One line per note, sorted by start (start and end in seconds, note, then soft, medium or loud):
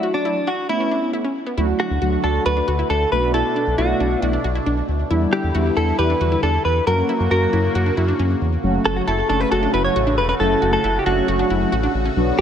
0.00 0.34 F#3 medium
0.00 0.34 A3 medium
0.00 0.34 D4 medium
0.00 0.14 E4 medium
0.00 0.34 F#4 medium
0.00 0.19 F#4 medium
0.14 0.48 D4 medium
0.25 0.41 E4 medium
0.47 0.64 D4 medium
0.47 0.69 F#4 medium
0.69 1.22 A3 medium
0.69 1.22 B3 medium
0.69 1.22 C#4 medium
0.69 0.77 E4 medium
0.69 1.10 E4 medium
0.69 1.22 E4 medium
0.80 0.89 C#4 medium
0.91 1.08 D4 medium
1.13 1.22 E4 medium
1.25 1.41 C#4 medium
1.47 1.55 B3 medium
1.58 1.73 D2 loud
1.58 3.10 D3 medium
1.58 1.84 F#3 medium
1.58 5.07 A3 medium
1.58 1.84 A3 medium
1.58 1.84 D4 medium
1.58 1.74 E4 medium
1.58 1.84 F#4 loud
1.58 3.10 F#4 medium
1.79 1.96 D4 medium
1.79 2.25 F#4 medium
1.91 1.98 D2 medium
2.02 2.17 D2 loud
2.02 2.55 F#3 medium
2.02 2.55 A3 medium
2.02 2.55 D4 medium
2.02 2.18 F#4 medium
2.02 2.55 F#4 medium
2.24 2.39 D2 medium
2.24 2.40 D4 medium
2.24 2.44 A4 medium
2.46 2.61 D2 loud
2.46 2.54 F#4 medium
2.46 2.90 B4 loud
2.57 2.65 D4 medium
2.68 2.83 D2 loud
2.68 2.76 F#4 medium
2.79 2.87 E4 medium
2.90 3.05 D2 loud
2.90 3.06 D4 medium
2.90 3.10 A4 loud
3.12 3.43 B1 medium
3.12 5.09 B2 medium
3.12 3.65 A3 medium
3.12 3.65 B3 medium
3.12 3.65 D4 medium
3.12 5.09 D4 medium
3.12 3.65 F#4 medium
3.12 3.34 B4 medium
3.34 3.50 E4 medium
3.34 3.75 A4 medium
3.56 3.72 D4 medium
3.67 3.75 B1 loud
3.78 3.94 B1 loud
3.78 4.31 A3 medium
3.78 4.31 B3 medium
3.78 4.31 D4 medium
3.78 4.31 E4 medium
3.78 4.25 F#4 medium
3.78 3.94 F#4 medium
4.00 4.16 B1 loud
4.00 4.17 D4 medium
4.22 4.38 B1 loud
4.22 4.40 E4 medium
4.22 4.30 F#4 medium
4.33 4.41 D4 medium
4.44 4.60 B1 loud
4.44 4.52 F#4 medium
4.55 4.64 E4 medium
4.66 4.82 B1 loud
4.66 4.83 D4 medium
4.88 5.04 D2 loud
5.10 5.26 E2 loud
5.10 6.85 D3 medium
5.10 6.85 G3 medium
5.10 5.37 G3 medium
5.10 5.37 B3 medium
5.10 5.37 D4 medium
5.10 6.85 E4 medium
5.10 5.27 E4 medium
5.10 5.37 E4 loud
5.33 5.49 D4 medium
5.33 5.74 G4 medium
5.44 5.51 E2 medium
5.54 5.70 E2 loud
5.54 6.07 G3 medium
5.54 6.07 B3 medium
5.54 6.07 D4 medium
5.54 6.07 E4 medium
5.54 5.71 F#4 medium
5.77 5.92 E2 loud
5.77 5.93 E4 medium
5.77 5.98 A4 medium
5.99 6.14 E2 loud
5.99 6.07 G4 medium
5.99 6.40 B4 loud
6.10 6.18 D4 medium
6.21 6.36 E2 loud
6.21 6.29 F#4 medium
6.32 6.40 E4 medium
6.43 6.58 E2 loud
6.43 6.59 D4 medium
6.43 6.65 A4 loud
6.65 6.80 E2 medium
6.65 6.85 B4 loud
6.87 7.02 F#2 loud
6.87 8.62 C#3 medium
6.87 7.13 F#3 medium
6.87 7.13 A#3 medium
6.87 8.62 A#3 medium
6.87 7.13 C#4 medium
6.87 7.13 F#4 medium
6.87 8.62 F#4 medium
6.87 7.03 F#4 medium
6.87 7.30 A#4 loud
7.09 7.25 E4 medium
7.20 7.28 F#2 loud
7.31 7.47 F#2 loud
7.31 7.84 F#3 medium
7.31 7.84 A#3 medium
7.31 7.84 C#4 medium
7.31 7.84 F#4 medium
7.31 7.47 F#4 medium
7.31 7.93 A#4 medium
7.53 7.69 F#2 loud
7.53 7.69 E4 medium
7.75 7.91 F#2 loud
7.75 7.83 F#4 medium
7.86 7.94 D4 medium
7.97 8.13 F#2 loud
7.97 8.05 E4 medium
8.08 8.16 D4 medium
8.19 8.35 F#2 loud
8.19 8.36 C#4 medium
8.41 8.57 E2 medium
8.63 8.79 F#1 loud
8.63 12.13 C#3 medium
8.63 9.03 F#3 medium
8.63 12.13 A3 medium
8.63 9.03 A3 medium
8.63 9.03 C#4 medium
8.63 9.03 F#4 loud
8.63 12.41 F#4 medium
8.85 9.01 F#1 loud
8.85 9.02 F#4 medium
8.85 8.97 A4 medium
8.96 9.01 F#4 medium
9.07 9.23 F#1 loud
9.07 9.24 E4 medium
9.07 9.28 A4 medium
9.29 9.45 F#1 loud
9.29 9.36 F#3 medium
9.29 9.36 A3 medium
9.29 9.36 C#4 medium
9.29 9.46 D4 medium
9.29 9.36 F#4 medium
9.29 9.41 A4 medium
9.41 9.93 F#3 medium
9.41 9.93 A3 medium
9.41 9.93 C#4 medium
9.41 9.93 F#4 medium
9.41 9.51 B4 loud
9.52 9.67 F#1 loud
9.52 9.60 F#4 medium
9.52 9.73 A4 loud
9.63 9.71 D4 medium
9.74 9.89 F#1 loud
9.74 9.90 E4 medium
9.74 9.84 B4 loud
9.85 10.15 C#5 loud
9.96 10.19 A1 medium
9.96 10.04 F#4 medium
10.07 10.23 D4 medium
10.18 10.33 E1 medium
10.18 10.28 B4 loud
10.29 10.37 C#4 medium
10.29 10.34 B4 loud
10.40 10.55 F#1 loud
10.40 10.80 F#3 medium
10.40 10.79 A3 medium
10.40 10.80 C#4 medium
10.40 10.80 E4 medium
10.40 10.72 A4 loud
10.62 10.77 F#1 loud
10.62 10.78 F#4 medium
10.73 10.97 A4 loud
10.84 10.99 F#1 medium
10.84 11.00 E4 medium
10.99 11.06 G4 medium
11.06 11.21 F#1 loud
11.06 11.13 F#3 medium
11.06 11.13 A3 medium
11.06 11.13 C#4 medium
11.06 11.22 D4 medium
11.06 11.13 F#4 medium
11.06 11.90 F#4 medium
11.17 11.70 F#3 medium
11.17 11.70 A3 medium
11.17 11.70 C#4 medium
11.17 11.70 F#4 medium
11.28 11.44 F#1 loud
11.28 11.36 F#4 medium
11.39 11.47 D4 medium
11.50 11.66 F#1 loud
11.50 11.67 E4 medium
11.72 11.88 A1 loud
11.72 11.80 F#4 medium
11.83 12.00 D4 medium
11.94 12.10 A1 medium
12.05 12.14 C#4 medium
12.16 12.32 B1 loud
12.16 12.41 D3 medium
12.16 12.41 F#3 loud
12.16 12.41 B3 medium
12.16 12.41 D4 medium
12.16 12.41 F#4 loud